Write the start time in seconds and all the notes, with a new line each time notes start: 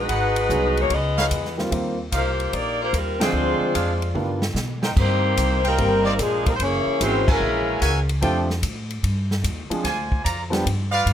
Already playing: G#3 D#4 F#4
0.00 B4
0.09 G#1 D#4 G#4 B4 F#5, kick, ride
0.36 ride
0.49 C2 F#3 G#3 B3 D#4 G#4, kick, hi-hat pedal
0.77 A#3 D#4 F#4 C#5, ride
0.90 C#2 B3 F4 G#4 D#5, kick, ride
1.17 D#4 B4 C#5 F5, snare
1.31 E2, kick, hi-hat pedal, ride
1.45 snare
1.58 D#3 G3 A#3 C4 F4, snare
1.71 D#2 D#3 G3 A#3 C4 F4, kick, ride
2.12 C2 A#3 D#4 F4 G4 C5 F5, kick, hi-hat pedal, ride
2.40 ride
2.53 A#1 A#3 D#4 G4 D5, kick, ride
2.81 A#3 F4 G4 C5
2.93 D#2 G3 C4 F4 A#4, kick, hi-hat pedal, ride
3.20 D3 F3 G#3 C4 D4 F4 G#4 C5 G5, snare, ride
3.33 D2
3.60 muted upright bass stroke
3.74 F2 D4 G#4 C5 F5, kick, hi-hat pedal, ride
4.02 ride
4.14 G2 D#3 G3 B3 D4 F4, high tom
4.42 snare
4.54 B2, snare, hi-hat pedal
4.83 D#4 A#4 C5 G5, snare
4.96 G2 D#3 G3 A#3 C4 D#4 G4 C5, kick, crash
5.37 C2, kick, hi-hat pedal, ride
5.64 D#3 G3 A#3 C4 D#4 A#4 C5 G5, ride
5.78 G1 D#3 G3 A#3 C4 G4, kick, ride
6.05 D#4 A#4 C5 D5
6.19 A#1 F3 G#3 A#3 D4 G#4, kick, hi-hat pedal, ride
6.46 D#3 G3 A#3 C4 D#4 A#4, kick, ride
6.55 C5
6.59 F#1 E3 A#3 C#4 E4 G#4 C#5, kick, ride
6.86 muted upright bass stroke
7.00 G#1 E3 G#3 A#3 C4 C#4 E4 F#4 C5, kick, hi-hat pedal, ride
7.27 C#3 E3 G#3 A#3 C#4 E4 F#4 A#4 E5 G#5, kick, crash
7.40 A#1
7.81 C#2 F#4 A#4 E5 G#5, kick, hi-hat pedal, ride
8.09 ride
8.22 F2 F3 A3 C4 D4 F4 G4 A4 D5 G5, kick, ride
8.50 snare
8.63 A2, kick, hi-hat pedal, ride
8.90 ride
9.03 G2, kick, ride
9.31 snare
9.44 D#2, kick, hi-hat pedal, ride
9.70 F3 G#3 C4 D4 G#4, muted upright bass stroke, ride
9.83 D2 F4 C5 D5 G#5, kick, snare, ride
10.12 kick
10.24 F2 F4 C5 D5 A#5, kick, hi-hat pedal, ride
10.50 F3 G3 B3 D4 G4, snare, ride
10.66 G2, kick, ride
10.92 F4 B4 D5 F5
11.06 G2, kick, hi-hat pedal, ride